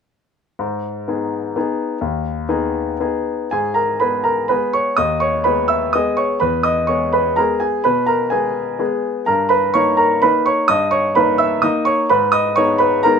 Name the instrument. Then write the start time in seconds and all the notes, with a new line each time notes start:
grand piano
0.59 G#2
1.08 B3 D#4 G#4
1.56 B3 D#4 G#4
2.01 D#2
2.49 B3 D#4 G#4
3.00 B3 D#4 G#4
3.51 G#2 G#4 G#5
3.74 A#4 A#5
4.00 G#3 B3 G#4 B4 B5
4.24 A#4 A#5
4.48 G#3 B3 G#4 B4 B5
4.73 C#5 C#6
4.97 D#2 D#5 D#6
5.20 C#5 C#6
5.44 G#3 B3 G#4 B4 B5
5.68 E5 E6
5.93 G#3 B3 G#4 D#5 D#6
6.17 C#5 C#6
6.40 E2 B4 B5
6.63 D#5 D#6
6.87 G#3 B3 G#4 C#5 C#6
7.13 B4 B5
7.36 G#3 B3 G#4 A#4 A#5
7.60 G#4 G#5
7.84 B2 B4 B5
8.06 A#4 A#5
8.30 G#3 B3 G#4 G#5
8.79 G#3 B3 G#4
9.26 G2 A#4 A#5
9.49 B4 B5
9.74 A#3 D#4 C#5 C#6
9.97 A#4 A#5
10.22 A#3 D#4 B4 B5
10.46 C#5 C#6
10.68 G2 D#5 D#6
10.91 C#5 C#6
11.15 A#3 D#4 B4 B5
11.38 E5 E6
11.62 A#3 D#4 D#5 D#6
11.85 C#5 C#6
12.09 G#2 B4 B5
12.32 D#5 D#6
12.56 G#3 B3 D#4 C#5 C#6
12.78 B4 B5
13.03 G#3 B3 D#4 A#4 A#5